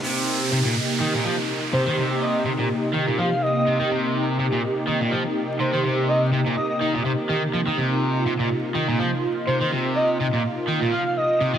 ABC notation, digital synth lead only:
X:1
M:4/4
L:1/16
Q:"Swing 16ths" 1/4=124
K:Cm
V:1 name="Digital synth lead"
z12 z2 c c | z2 e z6 z f f e4 | z12 z2 c c | z2 e z3 e e z8 |
z12 z2 c c | z2 e z6 z f f e4 |]